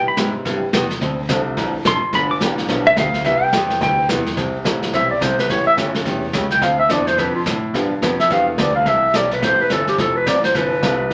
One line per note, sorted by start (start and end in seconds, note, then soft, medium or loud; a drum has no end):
0.07 0.12 C3 soft
0.07 0.18 B5 loud
0.16 0.33 G#2 medium
0.16 0.28 C3 medium
0.16 0.28 G3 medium
0.16 0.59 G3 medium
0.16 0.28 B3 medium
0.16 0.59 B3 medium
0.16 0.59 C4 medium
0.16 0.28 E4 medium
0.16 0.59 E4 medium
0.16 0.29 G4 medium
0.16 0.59 G4 medium
0.16 kick soft
0.16 snare medium
0.16 hi-hat pedal medium
0.35 0.40 G#2 soft
0.45 0.61 G2 medium
0.45 0.64 C3 medium
0.45 0.65 G3 medium
0.45 0.65 B3 medium
0.45 0.65 E4 medium
0.45 0.65 G4 medium
0.45 brush sweep soft
0.45 kick soft
0.45 snare soft
0.62 0.68 G2 soft
0.73 0.89 E2 loud
0.73 0.84 C3 medium
0.73 0.84 G3 medium
0.73 0.84 B3 medium
0.73 0.84 E4 medium
0.73 0.85 G4 medium
0.73 kick soft
0.73 snare medium
0.73 hi-hat pedal medium
0.90 0.96 E2 soft
0.90 snare soft
1.01 1.28 D2 medium
1.01 1.20 D3 medium
1.01 1.21 F3 medium
1.01 1.21 C4 medium
1.01 1.21 D4 medium
1.01 1.21 A4 medium
1.01 brush sweep soft
1.01 kick soft
1.01 snare soft
1.29 1.56 C2 loud
1.29 1.40 D3 medium
1.29 1.40 F3 medium
1.29 1.71 A3 medium
1.29 1.71 C4 medium
1.29 1.40 C4 medium
1.29 1.71 D4 medium
1.29 1.41 D4 medium
1.29 1.71 F4 medium
1.29 1.71 A4 medium
1.29 1.41 A4 medium
1.29 kick soft
1.29 snare medium
1.29 hi-hat pedal medium
1.57 1.73 A1 medium
1.57 1.77 D3 medium
1.57 1.77 F3 medium
1.57 1.77 C4 medium
1.57 1.77 D4 medium
1.57 1.77 A4 medium
1.57 brush sweep medium
1.57 kick soft
1.57 snare soft
1.74 1.80 A1 soft
1.85 2.01 F1 loud
1.85 1.96 D3 medium
1.85 1.96 F3 medium
1.85 1.96 C4 medium
1.85 1.96 D4 medium
1.85 1.96 A4 medium
1.85 2.12 C6 loud
1.85 kick soft
1.85 snare medium
1.85 hi-hat pedal medium
2.02 2.07 F1 soft
2.13 2.40 G1 medium
2.13 2.33 D3 medium
2.13 2.33 F3 medium
2.13 2.33 B3 medium
2.13 2.33 D4 medium
2.13 2.33 G4 medium
2.13 2.31 B5 medium
2.13 brush sweep soft
2.13 kick soft
2.13 snare soft
2.31 2.37 D6 loud
2.40 2.68 A1 medium
2.40 2.52 D3 medium
2.40 2.52 F3 medium
2.40 2.83 G3 medium
2.40 2.83 B3 medium
2.40 2.52 B3 medium
2.40 2.83 D4 medium
2.40 2.52 D4 medium
2.40 2.83 F4 medium
2.40 2.83 G4 medium
2.40 2.53 G4 medium
2.40 kick soft
2.40 snare medium
2.40 hi-hat pedal medium
2.58 snare soft
2.68 2.96 B1 medium
2.68 2.88 D3 medium
2.68 2.89 F3 medium
2.68 2.89 B3 medium
2.68 2.89 D4 medium
2.68 2.89 G4 medium
2.68 brush sweep soft
2.68 kick soft
2.68 snare soft
2.87 2.97 E5 loud
2.96 3.24 D2 loud
2.96 3.08 D3 medium
2.96 3.08 F3 medium
2.96 3.08 B3 medium
2.96 3.08 D4 medium
2.96 3.08 G4 medium
2.96 3.24 F5 loud
2.96 kick soft
2.96 snare medium
2.96 hi-hat pedal medium
3.14 snare soft
3.24 3.52 C2 medium
3.24 3.45 C3 medium
3.24 3.45 G3 medium
3.24 3.45 B3 medium
3.24 3.45 E4 medium
3.24 3.45 G4 medium
3.24 3.43 E5 medium
3.24 brush sweep soft
3.24 kick soft
3.24 snare soft
3.43 3.81 G5 loud
3.53 3.80 E2 medium
3.53 3.64 C3 medium
3.53 3.95 G3 medium
3.53 3.65 G3 medium
3.53 3.95 B3 medium
3.53 3.65 B3 medium
3.53 3.95 C4 medium
3.53 3.95 E4 medium
3.53 3.65 E4 medium
3.53 3.95 G4 medium
3.53 3.65 G4 medium
3.53 kick soft
3.53 snare medium
3.53 hi-hat pedal medium
3.70 snare soft
3.81 4.08 D2 medium
3.81 4.01 C3 medium
3.81 4.01 G3 medium
3.81 4.01 B3 medium
3.81 4.01 E4 medium
3.81 4.01 G4 medium
3.81 4.08 G5 medium
3.81 brush sweep medium
3.81 kick soft
3.81 snare soft
4.09 4.36 E2 loud
4.09 4.20 C3 medium
4.09 4.20 G3 medium
4.09 4.21 B3 medium
4.09 4.21 E4 medium
4.09 4.21 G4 medium
4.09 kick soft
4.09 snare medium
4.09 hi-hat pedal medium
4.26 snare soft
4.37 4.64 C2 medium
4.37 4.57 C3 medium
4.37 4.57 E3 soft
4.37 4.57 G3 medium
4.37 4.57 C4 medium
4.37 4.57 E4 medium
4.37 4.57 A4 medium
4.37 brush sweep soft
4.37 kick soft
4.37 snare soft
4.64 4.92 A1 medium
4.64 4.76 C3 medium
4.64 4.76 E3 medium
4.64 5.07 G3 medium
4.64 4.76 G3 medium
4.64 5.07 A3 medium
4.64 5.07 C4 medium
4.64 4.76 C4 medium
4.64 5.07 E4 medium
4.64 4.76 E4 medium
4.64 5.07 G4 medium
4.64 4.76 A4 medium
4.64 kick soft
4.64 snare medium
4.64 hi-hat pedal medium
4.82 snare soft
4.93 5.20 B1 medium
4.93 5.13 C3 medium
4.93 5.13 E3 medium
4.93 5.13 G3 medium
4.93 5.13 C4 medium
4.93 5.13 E4 medium
4.93 5.13 A4 medium
4.93 5.10 E5 medium
4.93 brush sweep medium
4.93 kick soft
4.93 snare soft
5.10 5.24 D5 medium
5.20 5.48 C2 loud
5.20 5.32 C3 medium
5.20 5.32 E3 medium
5.20 5.32 G3 medium
5.20 5.32 C4 medium
5.20 5.32 E4 medium
5.20 5.33 A4 medium
5.20 5.38 C5 medium
5.20 kick soft
5.20 snare medium
5.20 hi-hat pedal medium
5.39 5.52 B4 medium
5.39 snare soft
5.49 5.76 A1 medium
5.49 5.69 C#3 medium
5.49 5.69 E3 medium
5.49 5.69 A3 medium
5.49 5.69 C#4 medium
5.49 5.70 G4 medium
5.49 5.67 C#5 medium
5.49 brush sweep soft
5.49 kick soft
5.49 snare soft
5.67 5.73 E5 loud
5.76 6.04 G1 medium
5.76 5.88 C#3 medium
5.76 5.88 E3 medium
5.76 6.19 G3 medium
5.76 6.19 A3 medium
5.76 5.88 A3 medium
5.76 6.19 C#4 medium
5.76 5.89 C#4 medium
5.76 6.19 E4 medium
5.76 6.19 G4 medium
5.76 5.89 G4 medium
5.76 kick soft
5.76 snare medium
5.76 hi-hat pedal soft
5.94 snare soft
6.05 6.33 E2 medium
6.05 6.25 C#3 medium
6.05 6.25 E3 medium
6.05 6.25 A3 medium
6.05 6.25 C#4 medium
6.05 6.26 G4 medium
6.05 brush sweep soft
6.05 kick soft
6.05 snare soft
6.33 6.61 C#2 loud
6.33 6.45 C#3 medium
6.33 6.45 E3 medium
6.33 6.45 A3 medium
6.33 6.45 C#4 medium
6.33 6.45 G4 medium
6.33 kick soft
6.33 snare medium
6.33 hi-hat pedal medium
6.50 6.64 G5 loud
6.50 snare soft
6.61 6.89 D2 medium
6.61 6.81 D3 medium
6.61 6.81 F3 medium
6.61 6.82 C4 medium
6.61 6.82 D4 medium
6.61 6.82 A4 medium
6.61 6.78 F5 medium
6.61 brush sweep soft
6.61 kick soft
6.61 snare soft
6.79 6.93 E5 loud
6.89 7.17 E2 loud
6.89 7.01 D3 medium
6.89 7.01 F3 medium
6.89 7.01 C4 medium
6.89 7.01 D4 medium
6.89 7.02 A4 medium
6.89 7.09 D5 medium
6.89 kick soft
6.89 snare medium
6.89 hi-hat pedal medium
7.07 7.20 C5 medium
7.07 snare soft
7.18 7.45 F2 medium
7.18 7.37 D3 medium
7.18 7.38 F3 medium
7.18 7.38 C4 medium
7.18 7.38 D4 medium
7.18 7.38 A4 medium
7.18 7.35 B4 medium
7.18 brush sweep soft
7.18 kick soft
7.18 snare soft
7.35 7.42 F4 medium
7.46 7.73 A2 medium
7.46 7.57 D3 medium
7.46 7.57 F3 medium
7.46 7.57 C4 medium
7.46 7.57 D4 medium
7.46 7.57 A4 medium
7.46 kick soft
7.46 snare medium
7.46 hi-hat pedal medium
7.73 8.01 G2 medium
7.73 7.93 D3 medium
7.73 7.94 F3 medium
7.73 7.89 G3 medium
7.73 7.89 B3 medium
7.73 7.94 B3 medium
7.73 7.89 D4 medium
7.73 7.94 D4 medium
7.73 7.89 F4 medium
7.73 7.90 G4 medium
7.73 7.94 G4 medium
7.73 brush sweep soft
7.73 kick soft
7.73 snare soft
8.02 8.29 F2 medium
8.02 8.13 D3 medium
8.02 8.13 F3 medium
8.02 8.13 B3 medium
8.02 8.13 D4 medium
8.02 8.14 G4 medium
8.02 kick soft
8.02 snare medium
8.02 hi-hat pedal medium
8.20 8.33 E5 loud
8.20 snare soft
8.30 8.57 E2 medium
8.30 8.50 D3 medium
8.30 8.50 F3 medium
8.30 8.50 B3 medium
8.30 8.50 D4 medium
8.30 8.50 G4 medium
8.30 8.48 F5 loud
8.30 brush sweep soft
8.30 kick soft
8.30 snare soft
8.48 8.61 A4 soft
8.58 8.85 D2 medium
8.58 8.69 D3 medium
8.58 8.69 F3 medium
8.58 8.70 B3 medium
8.58 8.70 D4 medium
8.58 8.70 G4 medium
8.58 8.75 D5 medium
8.58 kick soft
8.58 snare medium
8.58 hi-hat pedal medium
8.75 8.85 G3 medium
8.75 8.85 A3 medium
8.75 8.85 C4 medium
8.75 8.85 E4 medium
8.75 8.85 A4 medium
8.75 8.89 F5 loud
8.86 9.13 C2 medium
8.86 9.06 E3 medium
8.86 9.06 G3 medium
8.86 9.06 C4 medium
8.86 9.06 E4 medium
8.86 9.06 A4 medium
8.86 9.17 E5 medium
8.86 brush sweep soft
8.86 kick soft
8.86 snare soft
9.14 9.41 B1 medium
9.14 9.25 E3 medium
9.14 9.25 G3 medium
9.14 9.25 C4 medium
9.14 9.26 E4 medium
9.14 9.26 A4 medium
9.14 9.32 D5 medium
9.14 kick soft
9.14 snare medium
9.14 hi-hat pedal medium
9.31 9.46 B4 medium
9.31 snare soft
9.42 9.58 A1 medium
9.42 9.62 E3 medium
9.42 9.84 G3 medium
9.42 9.62 G3 medium
9.42 9.84 A3 medium
9.42 9.84 C4 medium
9.42 9.62 C4 medium
9.42 9.84 E4 medium
9.42 9.63 E4 medium
9.42 9.84 G4 medium
9.42 9.63 A4 medium
9.42 9.60 C5 medium
9.42 brush sweep soft
9.42 kick soft
9.42 snare soft
9.60 9.65 A1 soft
9.60 9.73 B4 medium
9.70 9.97 G1 medium
9.70 9.82 E3 medium
9.70 9.82 G3 medium
9.70 9.82 C4 medium
9.70 9.82 E4 medium
9.70 9.87 A4 medium
9.70 9.82 A4 medium
9.70 kick soft
9.70 snare medium
9.70 hi-hat pedal medium
9.87 10.02 G4 medium
9.87 snare soft
9.98 10.26 F1 medium
9.98 10.18 F3 medium
9.98 10.18 C4 medium
9.98 10.18 E4 medium
9.98 10.18 A4 medium
9.98 brush sweep medium
9.98 kick soft
9.98 snare soft
10.16 10.30 B4 loud
10.26 10.54 A1 medium
10.26 10.37 F3 medium
10.26 10.38 C4 medium
10.26 10.38 E4 medium
10.26 10.38 A4 medium
10.26 10.44 D5 loud
10.26 kick soft
10.26 snare medium
10.26 hi-hat pedal medium
10.44 10.57 C5 medium
10.44 snare soft
10.54 10.82 G1 medium
10.54 10.74 F3 medium
10.54 10.74 C4 medium
10.54 10.75 E4 medium
10.54 10.75 A4 medium
10.54 11.13 B4 medium
10.54 brush sweep soft
10.54 kick soft
10.54 snare soft
10.82 11.10 C2 loud
10.82 10.94 F3 medium
10.82 10.98 G3 medium
10.82 10.98 A3 medium
10.82 10.98 C4 medium
10.82 10.94 C4 medium
10.82 10.98 E4 medium
10.82 10.94 E4 medium
10.82 10.98 F4 medium
10.82 10.94 A4 medium
10.82 kick soft
10.82 snare medium
10.82 hi-hat pedal medium